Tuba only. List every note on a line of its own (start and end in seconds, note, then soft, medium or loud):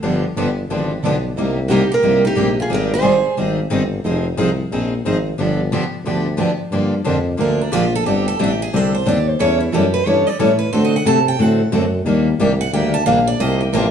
0.02 0.29 G1 medium
0.35 0.64 G1 medium
0.68 0.97 G#1 medium
1.03 1.31 B1 medium
1.36 1.90 C2 medium
2.04 2.32 C2 medium
2.37 2.65 A#1 medium
2.70 3.24 G#1 medium
3.37 3.66 G#1 medium
3.71 3.99 G1 medium
4.04 4.31 F1 medium
4.37 4.66 C2 medium
4.71 5.00 A#1 medium
5.04 5.33 G#1 medium
5.38 5.71 G1 medium
6.04 6.58 D2 medium
6.71 7.04 G2 medium
7.05 7.38 F2 medium
7.38 7.71 D2 medium
7.72 8.04 A#1 medium
8.05 8.38 G1 medium
8.39 8.72 A1 medium
8.72 9.05 C2 medium
9.06 9.39 D#2 medium
9.40 9.72 E2 medium
9.73 10.05 F#2 medium
10.06 10.25 G2 medium
10.28 10.34 G2 soft
10.40 10.72 A2 medium
10.74 11.05 D3 medium
11.06 11.38 C3 medium
11.39 11.71 A2 medium
11.72 12.04 F#2 medium
12.04 12.38 D#2 medium
12.38 12.71 C2 medium
12.71 13.05 D2 medium
13.06 13.39 A#1 medium
13.39 13.72 C2 medium
13.73 13.91 A1 medium